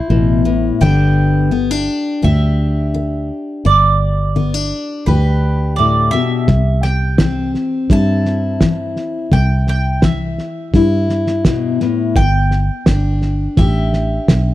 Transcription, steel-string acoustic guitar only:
Already playing: E4
0.10 B2
0.45 A2
0.81 G2 D3 B3 D4 G4
1.51 D3 B3
1.71 D4
2.22 G2 G4
2.94 D3
3.65 G2
4.36 D3 B3
4.54 D4
5.07 G2 G4
5.78 A2
6.13 B2
6.49 C3
7.20 E3 C4
7.91 G2 E4
8.62 E3
9.33 C3
10.04 E3
10.74 G2 E4
11.46 B2
11.81 A2
12.16 G2
12.88 D3 D4
13.58 G2 G4
14.29 D3

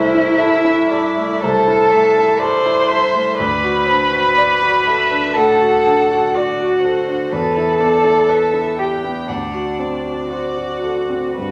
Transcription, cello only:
Already playing: E4
1.41 A4
2.39 C5
3.38 B4
5.35 A4
6.34 F#4
7.32 A4
8.79 G4
9.29 D4
10.31 F#4
11.36 F#4

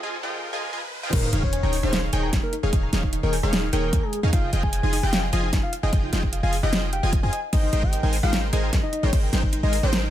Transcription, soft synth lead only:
1.13 A#4
1.43 C#5
1.83 C5
2.43 A#4
2.63 G#4
3.23 A#4
3.43 G#4
3.73 A#4
4.03 G#4
4.33 F5
4.63 G#5
5.03 G5
5.63 F5
5.83 D#5
6.43 F5
6.63 D#5
6.93 G5
7.23 G#5
7.53 D#5
7.83 G5
8.23 F5
8.83 D#5
9.03 C#5
9.63 D#5
9.83 C5

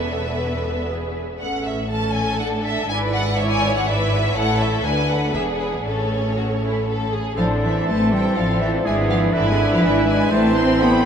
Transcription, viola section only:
Already playing: B3 A4
0.91 B3 G#4
1.42 C#4 A4
1.91 C#4 A4
2.40 D4
2.90 E4 D5
3.39 E4 D5
3.88 E4 D5
4.36 E4 C#5
4.85 D4 B4
5.09 A4
5.35 D4 G#4
5.86 C#4 A4
7.37 E4 C5
7.61 E4 C5
7.87 E4 C5
8.11 E4 C5
8.37 E4 C5
8.62 E4 C5
8.85 E4 D5
9.10 E4 D5
9.34 E4 D5
9.59 E4 D5
9.84 E4 D5
10.08 E4 D5
10.32 E4 C5

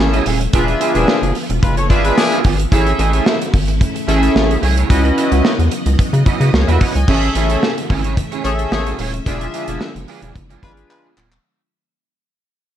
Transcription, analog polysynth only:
Already playing: C#4 E4 G#4 A4 E5
0.53 D4 F4 G#4 B4 E5
1.89 D4 F4 G#4 B4 E5
2.72 C#4 E4 G#4 A4 E5
4.08 C#4 E4 G#4 A4 E5
4.89 C#4 E4 F#4 B4 D#5
6.54 G#4 C#5
6.68 B4 E5
6.81 C#5 F#5
6.96 D#5 G#5
7.08 C#4 G#4 A4 E5
8.44 C#4 G#4 A4 E5
9.26 D4 F4 G#4 E5
10.62 D4 F4 G#4 B4

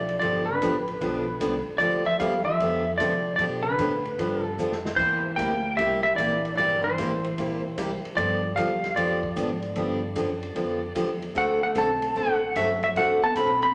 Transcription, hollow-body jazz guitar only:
Already playing: F3
0.20 F3
0.47 D3
1.78 F3
2.05 F3
2.19 G3
2.44 F3
2.99 F3
3.38 F3
3.63 D3
4.43 C3
4.96 E3
5.37 A#3
5.77 G3
6.03 G3
6.15 E3
6.55 E3
6.82 E3
8.15 F3
8.56 G3
8.96 F3
11.37 A3
11.65 A3
11.77 C4
12.17 A3
12.57 F#3
12.84 F#3
12.97 A3
13.23 B3
13.35 C4
13.63 C4

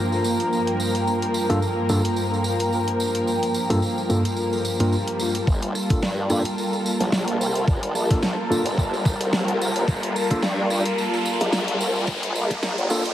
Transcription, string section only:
Already playing: G2 F3 A#3 A#4
5.47 G3 F4 A4 A#4

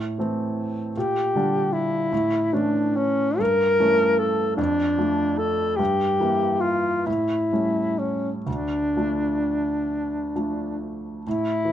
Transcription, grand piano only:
Already playing: A2
0.19 E3 A3 C4
0.97 A#2
1.35 D3 G3 D4
2.13 A2
2.53 E3 A3 C#4
3.39 G2
3.80 E3 A3 C#4
4.58 F2
4.98 F3 A3 D4
5.79 G2
6.20 E3 A#3 E4
7.06 A2
7.53 G3 A3 C#4
8.47 D2
8.97 F3 A3 D4
10.36 F3 A3 D4
11.27 A2
11.65 E3

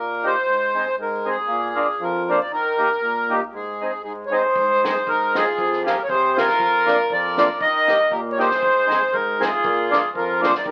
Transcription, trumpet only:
4.04 D#4
4.26 A#4
4.31 G#4
5.06 D#4
5.34 F4
5.83 G4
6.02 A#4
6.08 G#4
6.38 F4
7.11 A#4
7.60 A#4
8.11 G4
8.29 A#4
8.40 G#4
9.13 D#4
9.42 F4
10.16 F4
10.43 G#4
10.56 A#4
10.65 G4

